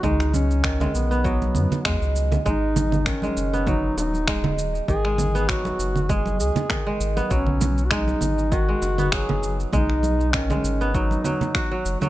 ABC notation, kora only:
X:1
M:4/4
L:1/16
Q:"Swing 16ths" 1/4=99
K:G#m
V:1 name="Kora" clef=bass
G, z3 D, G, z B, F, z3 G, z3 | G, z3 D, G, z B, F, z3 G, z3 | D, G, z B, F, z3 G, z3 D, G, z B, | F, z3 G, z3 D, G, z B, F, z3 |
G, z3 D, G, z B, F, z F, z F F, z F, |]